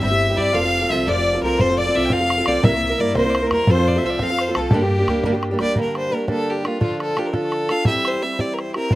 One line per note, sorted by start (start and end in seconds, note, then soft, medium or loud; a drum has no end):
0.00 0.31 G1 loud
0.00 0.11 G2 medium
0.00 0.11 D3 medium
0.00 0.12 G3 medium
0.00 0.11 C4 loud
0.00 0.10 E4 medium
0.00 0.09 G4 medium
0.00 0.34 E5 loud
0.00 0.39 E5 loud
0.11 0.30 G3 soft
0.11 0.29 C4 soft
0.11 0.29 E4 soft
0.11 0.28 G4 medium
0.29 0.35 G3 soft
0.29 0.36 C4 soft
0.29 0.36 E4 medium
0.29 0.37 G4 medium
0.36 0.51 G2 medium
0.36 0.53 G3 medium
0.36 0.52 C4 medium
0.36 0.54 E4 medium
0.36 0.54 G4 medium
0.36 0.54 D5 medium
0.36 0.56 D5 loud
0.53 0.83 F1 loud
0.53 0.63 F3 medium
0.53 0.63 C4 medium
0.53 0.63 F4 medium
0.53 0.62 A4 loud
0.53 0.91 F5 loud
0.53 0.93 F5 loud
0.63 0.82 C4 medium
0.63 0.81 F4 medium
0.63 0.80 A4 medium
0.82 0.90 C4 soft
0.82 0.90 F4 soft
0.82 0.90 A4 medium
0.89 1.03 C2 loud
0.89 1.06 F3 medium
0.89 1.06 C4 medium
0.89 1.07 F4 medium
0.89 1.08 A4 medium
0.89 1.06 E5 medium
0.89 1.10 E5 loud
1.07 1.35 F1 loud
1.07 1.16 F3 medium
1.07 1.16 C4 medium
1.07 1.17 F4 medium
1.07 1.16 A4 medium
1.07 1.40 D5 medium
1.07 1.43 D5 loud
1.17 1.35 C4 soft
1.17 1.35 F4 soft
1.17 1.33 A4 soft
1.34 1.43 C4 soft
1.34 1.43 F4 soft
1.34 1.42 A4 medium
1.42 1.55 C2 medium
1.42 1.59 F3 medium
1.42 1.59 C4 medium
1.42 1.60 F4 medium
1.42 1.60 A4 medium
1.42 1.59 A#4 medium
1.42 1.62 A#4 loud
1.57 1.87 F1 loud
1.57 1.69 F3 medium
1.57 1.69 C4 medium
1.57 1.69 F4 medium
1.57 1.79 C5 loud
1.57 1.78 C5 loud
1.57 bodhran medium
1.62 1.68 A4 medium
1.69 1.88 C4 soft
1.69 1.87 F4 medium
1.69 1.85 A4 medium
1.77 2.06 D5 medium
1.77 1.97 D5 loud
1.77 bodhran soft
1.86 1.95 C4 medium
1.86 1.95 F4 soft
1.86 1.94 A4 medium
1.95 2.08 C2 loud
1.95 2.10 F3 medium
1.95 2.11 C4 medium
1.95 2.11 F4 medium
1.95 2.12 A4 medium
1.95 2.13 E5 loud
2.04 2.15 G5 medium
2.10 2.40 F1 loud
2.10 2.20 F3 medium
2.10 2.21 C4 medium
2.10 2.20 F4 medium
2.10 2.19 A4 medium
2.10 2.50 F5 loud
2.10 2.46 F5 medium
2.10 bodhran medium
2.20 2.39 C4 soft
2.20 2.38 F4 soft
2.20 2.37 A4 soft
2.30 bodhran medium
2.38 2.47 C4 soft
2.38 2.47 F4 medium
2.38 2.46 A4 medium
2.46 2.60 C2 medium
2.46 2.62 F3 medium
2.46 2.63 C4 medium
2.46 2.63 F4 medium
2.46 2.64 A4 medium
2.46 2.65 D5 medium
2.46 2.66 D5 loud
2.46 bodhran medium
2.62 2.92 C2 loud
2.62 2.72 C3 medium
2.62 2.72 G3 medium
2.62 2.72 A#3 medium
2.62 2.73 E4 medium
2.62 2.72 A#4 medium
2.62 2.99 E5 loud
2.62 3.02 E5 loud
2.62 bodhran loud
2.73 2.91 A#3 soft
2.73 2.90 E4 medium
2.73 2.89 A#4 medium
2.83 bodhran soft
2.90 2.98 A#3 soft
2.90 2.99 E4 soft
2.90 2.98 A#4 medium
2.98 3.12 G2 loud
2.98 3.15 G3 medium
2.98 3.15 A#3 medium
2.98 3.16 E4 medium
2.98 3.16 A#4 medium
2.98 3.16 D5 medium
3.15 3.44 C2 loud
3.15 3.25 C3 medium
3.15 3.25 G3 medium
3.15 3.25 A#3 medium
3.15 3.25 E4 medium
3.15 3.23 A#4 medium
3.15 3.31 C5 medium
3.15 3.49 C5 medium
3.15 bodhran medium
3.25 3.44 A#3 soft
3.25 3.43 E4 soft
3.25 3.41 A#4 soft
3.30 3.36 D5 medium
3.35 3.48 C5 medium
3.35 bodhran medium
3.42 3.51 A#3 soft
3.42 3.51 E4 medium
3.42 3.51 A#4 medium
3.46 3.64 E2 medium
3.46 3.53 A#4 medium
3.51 3.67 G3 medium
3.51 3.68 A#3 medium
3.51 3.68 E4 medium
3.51 3.72 A#4 loud
3.51 3.69 A#4 medium
3.51 3.68 C5 medium
3.51 bodhran medium
3.67 3.96 F2 loud
3.67 3.77 F3 medium
3.67 3.77 C4 medium
3.67 3.77 F4 medium
3.67 3.76 A4 medium
3.67 3.89 C5 loud
3.67 4.07 C5 loud
3.67 bodhran medium
3.77 3.96 C4 medium
3.77 3.95 F4 medium
3.77 3.95 A4 medium
3.87 4.00 D5 medium
3.87 bodhran soft
3.96 4.03 C4 soft
3.96 4.04 F4 medium
3.96 4.04 A4 medium
3.96 4.11 E5 medium
4.03 4.16 C2 medium
4.03 4.20 F3 medium
4.03 4.20 C4 medium
4.03 4.20 F4 medium
4.03 4.21 A4 medium
4.03 4.24 E5 medium
4.10 4.19 D5 medium
4.19 4.48 F2 medium
4.19 4.30 F3 medium
4.19 4.30 C4 medium
4.19 4.30 F4 medium
4.19 4.29 A4 medium
4.19 4.53 F5 loud
4.19 4.42 F5 medium
4.19 bodhran medium
4.30 4.48 C4 soft
4.30 4.48 F4 soft
4.30 4.47 A4 soft
4.38 4.61 C5 medium
4.38 bodhran medium
4.48 4.56 C4 soft
4.48 4.56 F4 medium
4.48 4.56 A4 medium
4.55 4.68 C2 medium
4.55 4.72 F3 medium
4.55 4.73 C4 medium
4.55 4.73 F4 medium
4.55 4.73 A4 medium
4.55 bodhran medium
4.59 4.76 A4 medium
4.71 5.00 G2 loud
4.71 4.82 G2 medium
4.71 4.82 D3 medium
4.71 4.82 G3 medium
4.71 4.82 A#3 loud
4.71 4.82 D4 medium
4.71 5.43 G4 medium
4.71 4.81 G4 medium
4.71 5.45 G4 medium
4.71 bodhran loud
4.82 5.01 G3 medium
4.82 5.00 A#3 soft
4.82 4.99 D4 medium
4.82 4.98 G4 medium
4.91 bodhran soft
4.99 5.07 G3 soft
4.99 5.08 A#3 soft
4.99 5.08 D4 medium
4.99 5.07 G4 medium
5.07 5.20 D2 medium
5.07 5.24 G3 medium
5.07 5.24 A#3 medium
5.07 5.24 D4 medium
5.07 5.25 G4 medium
5.07 bodhran medium
5.23 5.52 G2 loud
5.23 5.34 G2 medium
5.23 5.34 D3 medium
5.23 5.34 G3 medium
5.23 5.33 A#3 loud
5.23 5.33 D4 loud
5.23 5.32 G4 medium
5.23 bodhran medium
5.33 5.53 G3 medium
5.33 5.52 A#3 soft
5.33 5.51 D4 soft
5.33 5.50 G4 medium
5.43 bodhran medium
5.51 5.58 G3 soft
5.51 5.59 A#3 soft
5.51 5.60 D4 medium
5.51 5.59 G4 medium
5.59 5.72 D2 medium
5.59 5.75 G3 medium
5.59 5.75 A#3 medium
5.59 5.76 D4 medium
5.59 5.76 G4 medium
5.59 5.77 D5 loud
5.59 bodhran medium
5.76 6.12 G2 medium
5.76 6.12 D3 medium
5.76 6.09 G3 medium
5.76 6.10 A#3 medium
5.76 6.10 D4 medium
5.76 6.11 G4 medium
5.76 bodhran medium
5.81 5.97 A#4 medium
5.85 bodhran soft
5.95 6.15 C5 medium
5.95 bodhran medium
6.10 6.28 G3 medium
6.10 6.27 A#3 medium
6.10 6.27 D4 medium
6.10 6.26 G4 medium
6.10 6.29 A#4 medium
6.28 6.65 G2 medium
6.28 6.64 D3 medium
6.28 6.65 G3 medium
6.28 6.64 A#3 medium
6.28 6.64 D4 medium
6.28 6.63 G4 medium
6.28 6.51 A4 loud
6.28 bodhran medium
6.50 6.68 G4 medium
6.64 6.80 G3 medium
6.64 6.80 A#3 soft
6.64 6.80 D4 medium
6.64 6.82 F4 medium
6.64 6.81 G4 soft
6.64 bodhran medium
6.80 7.16 D3 medium
6.80 7.15 F3 medium
6.80 7.16 D4 medium
6.80 7.17 F4 medium
6.80 7.00 F4 medium
6.80 7.17 A4 medium
6.80 bodhran medium
6.90 bodhran soft
7.00 7.20 A4 loud
7.00 bodhran medium
7.16 7.33 F3 medium
7.16 7.33 D4 medium
7.16 7.32 F4 medium
7.16 7.28 G4 medium
7.16 7.32 A4 medium
7.16 bodhran medium
7.26 7.36 A#4 medium
7.33 7.70 D3 medium
7.33 7.70 F3 medium
7.33 7.69 D4 medium
7.33 7.69 F4 medium
7.33 7.68 A4 medium
7.33 7.72 A4 loud
7.33 bodhran medium
7.52 bodhran medium
7.69 7.87 D4 soft
7.69 7.87 F4 soft
7.69 7.86 A4 medium
7.69 7.87 F5 loud
7.69 bodhran medium
7.85 8.22 E3 medium
7.85 8.21 G3 medium
7.85 8.22 C4 medium
7.85 8.23 E4 medium
7.85 8.22 G4 medium
7.85 8.09 E5 loud
7.85 bodhran loud
7.95 bodhran soft
8.05 8.24 C5 loud
8.05 bodhran medium
8.22 8.39 G3 medium
8.22 8.38 C4 medium
8.22 8.38 E4 medium
8.22 8.38 G4 medium
8.22 8.42 E5 medium
8.39 8.75 E3 soft
8.39 8.75 G3 medium
8.39 8.75 C4 soft
8.39 8.74 E4 medium
8.39 8.74 G4 medium
8.39 8.55 D5 medium
8.39 bodhran medium
8.54 8.61 A#4 medium
8.59 8.74 C5 medium
8.59 bodhran medium
8.74 8.91 C4 soft
8.74 8.91 E4 soft
8.74 8.91 G4 soft
8.74 8.94 A#4 loud
8.74 bodhran medium
8.91 8.95 A2 medium
8.91 8.95 E3 medium
8.91 8.95 A3 medium
8.91 8.95 C4 medium
8.91 8.95 E4 medium
8.91 bodhran medium